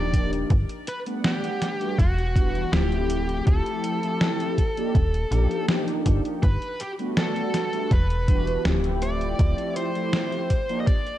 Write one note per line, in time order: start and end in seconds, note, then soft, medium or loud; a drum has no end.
0.00 0.45 D#1 medium
0.00 0.48 F3 medium
0.00 0.48 A#3 medium
0.00 0.48 D4 medium
0.00 0.49 D#4 medium
0.00 0.49 G4 medium
0.00 0.29 D5 medium
0.13 kick medium
0.13 closed hi-hat medium
0.33 closed hi-hat soft
0.50 0.66 G1 loud
0.50 kick loud
0.50 closed hi-hat medium
0.69 closed hi-hat soft
0.87 0.98 B4 loud
0.87 closed hi-hat medium
1.06 1.76 G3 medium
1.06 1.76 A3 medium
1.06 1.76 B3 medium
1.06 1.76 D4 medium
1.06 1.76 F#5 medium
1.06 closed hi-hat soft
1.24 1.99 G4 medium
1.24 snare loud
1.24 closed hi-hat medium
1.44 closed hi-hat soft
1.62 snare medium
1.62 closed hi-hat medium
1.80 1.96 G3 medium
1.80 1.96 A3 medium
1.80 1.97 B3 medium
1.80 1.97 D4 medium
1.80 1.97 F#4 medium
1.80 closed hi-hat soft
1.99 2.65 E1 medium
1.99 2.73 F#4 medium
1.99 kick loud
1.99 closed hi-hat medium
2.18 closed hi-hat soft
2.35 2.68 E3 medium
2.35 2.68 G3 medium
2.35 2.68 B3 medium
2.35 2.69 D4 medium
2.35 2.69 F#4 medium
2.35 kick loud
2.35 closed hi-hat medium
2.55 closed hi-hat soft
2.72 3.41 D1 medium
2.72 3.98 F3 medium
2.72 3.98 A3 medium
2.72 3.99 C4 medium
2.72 3.99 E4 medium
2.72 3.43 G4 medium
2.72 3.99 G4 medium
2.72 snare loud
2.72 closed hi-hat medium
2.92 closed hi-hat soft
3.10 closed hi-hat medium
3.29 closed hi-hat soft
3.47 3.62 D1 loud
3.47 5.65 A4 medium
3.47 kick loud
3.47 closed hi-hat medium
3.66 closed hi-hat soft
3.84 closed hi-hat medium
4.03 4.56 F3 medium
4.03 4.56 A3 medium
4.03 4.56 C4 medium
4.03 4.56 E4 medium
4.03 4.56 G4 medium
4.03 closed hi-hat soft
4.21 snare loud
4.21 closed hi-hat medium
4.40 closed hi-hat soft
4.58 kick medium
4.58 closed hi-hat medium
4.77 4.94 F3 medium
4.77 4.94 A#3 medium
4.77 4.94 D4 medium
4.77 4.94 D#4 medium
4.77 4.94 G4 medium
4.77 closed hi-hat soft
4.95 5.25 D#1 medium
4.95 kick loud
4.95 closed hi-hat medium
5.14 closed hi-hat soft
5.31 5.47 A#1 medium
5.31 5.64 F3 medium
5.31 5.65 A#3 medium
5.31 5.65 D4 medium
5.31 5.65 D#4 medium
5.31 5.65 G4 medium
5.31 closed hi-hat medium
5.51 closed hi-hat soft
5.68 6.41 F3 medium
5.68 6.41 A#3 medium
5.68 6.41 D4 medium
5.68 6.41 D#4 medium
5.68 6.42 G4 medium
5.68 snare loud
5.68 closed hi-hat medium
5.88 closed hi-hat soft
6.06 6.21 G1 medium
6.06 kick medium
6.06 closed hi-hat medium
6.25 closed hi-hat soft
6.43 6.58 G1 loud
6.43 6.81 B4 loud
6.43 kick loud
6.43 closed hi-hat medium
6.62 closed hi-hat soft
6.80 6.91 G4 medium
6.80 closed hi-hat medium
6.99 7.69 G3 medium
6.99 7.69 A3 medium
6.99 7.69 B3 medium
6.99 7.69 D4 medium
6.99 7.69 F#4 medium
6.99 closed hi-hat soft
7.17 7.94 A4 medium
7.17 snare loud
7.17 closed hi-hat medium
7.36 closed hi-hat soft
7.54 snare medium
7.54 closed hi-hat medium
7.73 7.89 G3 medium
7.73 7.89 A3 medium
7.73 7.89 B3 medium
7.73 7.89 D4 medium
7.73 7.90 F#4 medium
7.73 closed hi-hat soft
7.91 8.58 E1 medium
7.91 8.62 B4 medium
7.91 kick loud
7.91 closed hi-hat medium
8.10 closed hi-hat soft
8.28 8.61 E3 medium
8.28 8.61 G3 medium
8.28 8.61 B3 medium
8.28 8.61 D4 medium
8.28 8.62 F#4 medium
8.28 kick medium
8.28 closed hi-hat medium
8.47 closed hi-hat soft
8.64 9.34 D1 medium
8.64 9.90 F3 medium
8.64 9.91 A3 medium
8.64 9.91 C4 medium
8.64 9.92 E4 medium
8.64 9.92 G4 medium
8.64 snare loud
8.64 closed hi-hat medium
8.84 closed hi-hat soft
9.02 9.73 D5 loud
9.02 closed hi-hat medium
9.21 closed hi-hat soft
9.39 9.55 D1 loud
9.39 kick loud
9.39 closed hi-hat medium
9.58 closed hi-hat soft
9.76 10.80 C5 loud
9.76 closed hi-hat medium
9.95 10.48 F3 medium
9.95 10.48 A3 medium
9.95 10.49 C4 medium
9.95 10.49 E4 medium
9.95 10.49 G4 medium
9.95 closed hi-hat soft
10.13 snare loud
10.13 closed hi-hat medium
10.32 closed hi-hat soft
10.50 kick medium
10.50 closed hi-hat medium
10.69 10.86 F3 medium
10.69 10.86 A#3 medium
10.69 10.87 D4 medium
10.69 10.87 D#4 medium
10.69 10.87 G4 medium
10.69 closed hi-hat soft
10.80 10.87 D#5 medium
10.87 11.18 D5 loud
10.87 kick loud
10.87 closed hi-hat medium
11.07 closed hi-hat soft